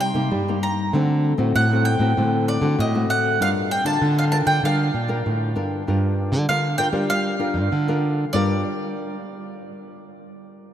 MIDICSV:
0, 0, Header, 1, 4, 480
1, 0, Start_track
1, 0, Key_signature, -2, "minor"
1, 0, Tempo, 616650
1, 729, Time_signature, 4, 2, 24, 8
1, 8357, End_track
2, 0, Start_track
2, 0, Title_t, "Mandolin"
2, 0, Program_c, 0, 25
2, 4, Note_on_c, 0, 79, 83
2, 487, Note_off_c, 0, 79, 0
2, 490, Note_on_c, 0, 82, 71
2, 713, Note_off_c, 0, 82, 0
2, 1211, Note_on_c, 0, 78, 85
2, 1438, Note_off_c, 0, 78, 0
2, 1441, Note_on_c, 0, 79, 86
2, 1894, Note_off_c, 0, 79, 0
2, 1933, Note_on_c, 0, 74, 75
2, 2178, Note_off_c, 0, 74, 0
2, 2182, Note_on_c, 0, 75, 79
2, 2399, Note_off_c, 0, 75, 0
2, 2414, Note_on_c, 0, 78, 84
2, 2658, Note_off_c, 0, 78, 0
2, 2661, Note_on_c, 0, 77, 99
2, 2724, Note_off_c, 0, 77, 0
2, 2891, Note_on_c, 0, 79, 94
2, 3000, Note_off_c, 0, 79, 0
2, 3003, Note_on_c, 0, 81, 92
2, 3253, Note_off_c, 0, 81, 0
2, 3258, Note_on_c, 0, 77, 75
2, 3297, Note_off_c, 0, 77, 0
2, 3362, Note_on_c, 0, 81, 86
2, 3401, Note_off_c, 0, 81, 0
2, 3478, Note_on_c, 0, 79, 84
2, 3594, Note_off_c, 0, 79, 0
2, 3621, Note_on_c, 0, 77, 84
2, 4304, Note_off_c, 0, 77, 0
2, 5051, Note_on_c, 0, 77, 93
2, 5273, Note_off_c, 0, 77, 0
2, 5278, Note_on_c, 0, 79, 89
2, 5344, Note_off_c, 0, 79, 0
2, 5525, Note_on_c, 0, 77, 97
2, 6215, Note_off_c, 0, 77, 0
2, 6484, Note_on_c, 0, 74, 81
2, 6709, Note_off_c, 0, 74, 0
2, 8357, End_track
3, 0, Start_track
3, 0, Title_t, "Nylon-string guitar"
3, 0, Program_c, 1, 24
3, 0, Note_on_c, 1, 48, 51
3, 114, Note_on_c, 1, 55, 62
3, 115, Note_on_c, 1, 58, 67
3, 120, Note_on_c, 1, 63, 67
3, 223, Note_off_c, 1, 48, 0
3, 254, Note_on_c, 1, 43, 59
3, 323, Note_off_c, 1, 55, 0
3, 324, Note_off_c, 1, 58, 0
3, 327, Note_off_c, 1, 63, 0
3, 376, Note_on_c, 1, 55, 60
3, 379, Note_on_c, 1, 58, 61
3, 381, Note_on_c, 1, 63, 64
3, 695, Note_off_c, 1, 55, 0
3, 695, Note_off_c, 1, 58, 0
3, 697, Note_off_c, 1, 63, 0
3, 708, Note_off_c, 1, 43, 0
3, 732, Note_on_c, 1, 50, 58
3, 737, Note_on_c, 1, 57, 62
3, 737, Note_on_c, 1, 60, 63
3, 741, Note_on_c, 1, 66, 63
3, 1054, Note_off_c, 1, 57, 0
3, 1055, Note_off_c, 1, 60, 0
3, 1057, Note_off_c, 1, 66, 0
3, 1071, Note_on_c, 1, 57, 66
3, 1076, Note_on_c, 1, 60, 65
3, 1080, Note_on_c, 1, 66, 73
3, 1188, Note_off_c, 1, 50, 0
3, 1214, Note_on_c, 1, 45, 58
3, 1282, Note_off_c, 1, 57, 0
3, 1284, Note_off_c, 1, 60, 0
3, 1286, Note_off_c, 1, 66, 0
3, 1337, Note_on_c, 1, 57, 57
3, 1343, Note_on_c, 1, 60, 64
3, 1348, Note_on_c, 1, 66, 62
3, 1535, Note_off_c, 1, 57, 0
3, 1538, Note_off_c, 1, 60, 0
3, 1540, Note_off_c, 1, 66, 0
3, 1558, Note_on_c, 1, 57, 53
3, 1563, Note_on_c, 1, 60, 58
3, 1567, Note_on_c, 1, 66, 63
3, 1646, Note_off_c, 1, 57, 0
3, 1648, Note_off_c, 1, 60, 0
3, 1650, Note_off_c, 1, 66, 0
3, 1668, Note_off_c, 1, 45, 0
3, 1694, Note_on_c, 1, 50, 55
3, 1700, Note_on_c, 1, 57, 54
3, 1700, Note_on_c, 1, 60, 51
3, 2015, Note_off_c, 1, 57, 0
3, 2016, Note_off_c, 1, 60, 0
3, 2039, Note_on_c, 1, 57, 57
3, 2044, Note_on_c, 1, 60, 58
3, 2046, Note_on_c, 1, 66, 68
3, 2148, Note_off_c, 1, 50, 0
3, 2171, Note_on_c, 1, 45, 59
3, 2246, Note_off_c, 1, 57, 0
3, 2248, Note_off_c, 1, 60, 0
3, 2249, Note_off_c, 1, 66, 0
3, 2294, Note_on_c, 1, 57, 63
3, 2297, Note_on_c, 1, 60, 60
3, 2301, Note_on_c, 1, 66, 67
3, 2613, Note_off_c, 1, 57, 0
3, 2615, Note_off_c, 1, 60, 0
3, 2616, Note_off_c, 1, 66, 0
3, 2626, Note_off_c, 1, 45, 0
3, 2649, Note_on_c, 1, 55, 57
3, 2653, Note_on_c, 1, 62, 57
3, 2656, Note_on_c, 1, 70, 61
3, 2658, Note_on_c, 1, 65, 56
3, 2875, Note_off_c, 1, 62, 0
3, 2876, Note_off_c, 1, 65, 0
3, 2878, Note_off_c, 1, 70, 0
3, 2994, Note_on_c, 1, 62, 56
3, 2998, Note_on_c, 1, 65, 62
3, 3002, Note_on_c, 1, 70, 61
3, 3106, Note_off_c, 1, 55, 0
3, 3132, Note_on_c, 1, 50, 57
3, 3323, Note_off_c, 1, 62, 0
3, 3325, Note_off_c, 1, 65, 0
3, 3326, Note_off_c, 1, 70, 0
3, 3362, Note_on_c, 1, 62, 56
3, 3366, Note_on_c, 1, 65, 53
3, 3371, Note_on_c, 1, 70, 56
3, 3567, Note_off_c, 1, 62, 0
3, 3569, Note_off_c, 1, 65, 0
3, 3571, Note_off_c, 1, 70, 0
3, 3587, Note_off_c, 1, 50, 0
3, 3612, Note_on_c, 1, 55, 53
3, 3617, Note_on_c, 1, 62, 55
3, 3618, Note_on_c, 1, 65, 56
3, 3620, Note_on_c, 1, 70, 62
3, 3836, Note_off_c, 1, 62, 0
3, 3839, Note_off_c, 1, 65, 0
3, 3839, Note_off_c, 1, 70, 0
3, 3956, Note_on_c, 1, 62, 62
3, 3960, Note_on_c, 1, 65, 57
3, 3964, Note_on_c, 1, 70, 68
3, 4067, Note_off_c, 1, 55, 0
3, 4096, Note_on_c, 1, 50, 54
3, 4284, Note_off_c, 1, 62, 0
3, 4286, Note_off_c, 1, 65, 0
3, 4288, Note_off_c, 1, 70, 0
3, 4324, Note_on_c, 1, 62, 58
3, 4328, Note_on_c, 1, 65, 57
3, 4331, Note_on_c, 1, 70, 62
3, 4528, Note_off_c, 1, 62, 0
3, 4530, Note_off_c, 1, 65, 0
3, 4531, Note_off_c, 1, 70, 0
3, 4548, Note_off_c, 1, 50, 0
3, 4572, Note_on_c, 1, 55, 55
3, 4574, Note_on_c, 1, 62, 54
3, 4578, Note_on_c, 1, 70, 55
3, 4580, Note_on_c, 1, 65, 54
3, 5012, Note_off_c, 1, 62, 0
3, 5014, Note_off_c, 1, 65, 0
3, 5015, Note_off_c, 1, 70, 0
3, 5027, Note_off_c, 1, 55, 0
3, 5049, Note_on_c, 1, 50, 57
3, 5053, Note_on_c, 1, 62, 54
3, 5056, Note_on_c, 1, 65, 57
3, 5060, Note_on_c, 1, 70, 63
3, 5190, Note_off_c, 1, 62, 0
3, 5193, Note_off_c, 1, 65, 0
3, 5195, Note_off_c, 1, 70, 0
3, 5279, Note_on_c, 1, 62, 59
3, 5285, Note_on_c, 1, 65, 59
3, 5287, Note_on_c, 1, 70, 66
3, 5356, Note_off_c, 1, 62, 0
3, 5357, Note_off_c, 1, 65, 0
3, 5359, Note_off_c, 1, 70, 0
3, 5389, Note_on_c, 1, 62, 55
3, 5392, Note_on_c, 1, 65, 55
3, 5396, Note_on_c, 1, 70, 60
3, 5506, Note_off_c, 1, 50, 0
3, 5526, Note_on_c, 1, 55, 58
3, 5720, Note_off_c, 1, 62, 0
3, 5722, Note_off_c, 1, 65, 0
3, 5724, Note_off_c, 1, 70, 0
3, 5753, Note_on_c, 1, 62, 53
3, 5758, Note_on_c, 1, 65, 59
3, 5759, Note_on_c, 1, 70, 63
3, 5983, Note_off_c, 1, 55, 0
3, 5986, Note_off_c, 1, 62, 0
3, 5987, Note_off_c, 1, 65, 0
3, 5989, Note_off_c, 1, 70, 0
3, 6006, Note_on_c, 1, 50, 62
3, 6134, Note_on_c, 1, 62, 71
3, 6136, Note_on_c, 1, 65, 63
3, 6140, Note_on_c, 1, 70, 67
3, 6453, Note_off_c, 1, 62, 0
3, 6453, Note_off_c, 1, 65, 0
3, 6454, Note_off_c, 1, 70, 0
3, 6463, Note_off_c, 1, 50, 0
3, 6486, Note_on_c, 1, 55, 61
3, 6491, Note_on_c, 1, 62, 65
3, 6494, Note_on_c, 1, 65, 68
3, 6501, Note_on_c, 1, 70, 75
3, 7124, Note_off_c, 1, 55, 0
3, 7124, Note_off_c, 1, 62, 0
3, 7124, Note_off_c, 1, 65, 0
3, 7124, Note_off_c, 1, 70, 0
3, 8357, End_track
4, 0, Start_track
4, 0, Title_t, "Nylon-string guitar"
4, 0, Program_c, 2, 24
4, 111, Note_on_c, 2, 48, 90
4, 221, Note_off_c, 2, 48, 0
4, 245, Note_on_c, 2, 55, 90
4, 451, Note_off_c, 2, 55, 0
4, 727, Note_on_c, 2, 50, 90
4, 1034, Note_off_c, 2, 50, 0
4, 1076, Note_on_c, 2, 45, 75
4, 1184, Note_off_c, 2, 45, 0
4, 1210, Note_on_c, 2, 45, 92
4, 1516, Note_off_c, 2, 45, 0
4, 1553, Note_on_c, 2, 45, 88
4, 1662, Note_off_c, 2, 45, 0
4, 1692, Note_on_c, 2, 45, 93
4, 1997, Note_off_c, 2, 45, 0
4, 2035, Note_on_c, 2, 50, 94
4, 2143, Note_off_c, 2, 50, 0
4, 2169, Note_on_c, 2, 45, 92
4, 2373, Note_off_c, 2, 45, 0
4, 2654, Note_on_c, 2, 43, 86
4, 2958, Note_off_c, 2, 43, 0
4, 2993, Note_on_c, 2, 50, 69
4, 3102, Note_off_c, 2, 50, 0
4, 3126, Note_on_c, 2, 50, 91
4, 3433, Note_off_c, 2, 50, 0
4, 3477, Note_on_c, 2, 50, 85
4, 3584, Note_off_c, 2, 50, 0
4, 3606, Note_on_c, 2, 50, 94
4, 3811, Note_off_c, 2, 50, 0
4, 3845, Note_on_c, 2, 46, 82
4, 4063, Note_off_c, 2, 46, 0
4, 4095, Note_on_c, 2, 45, 79
4, 4308, Note_off_c, 2, 45, 0
4, 4327, Note_on_c, 2, 43, 79
4, 4544, Note_off_c, 2, 43, 0
4, 4579, Note_on_c, 2, 43, 81
4, 4919, Note_on_c, 2, 50, 85
4, 4934, Note_off_c, 2, 43, 0
4, 5025, Note_off_c, 2, 50, 0
4, 5052, Note_on_c, 2, 50, 88
4, 5254, Note_off_c, 2, 50, 0
4, 5394, Note_on_c, 2, 55, 79
4, 5869, Note_on_c, 2, 43, 84
4, 5881, Note_off_c, 2, 55, 0
4, 5979, Note_off_c, 2, 43, 0
4, 6011, Note_on_c, 2, 50, 91
4, 6418, Note_off_c, 2, 50, 0
4, 6493, Note_on_c, 2, 43, 91
4, 6714, Note_off_c, 2, 43, 0
4, 8357, End_track
0, 0, End_of_file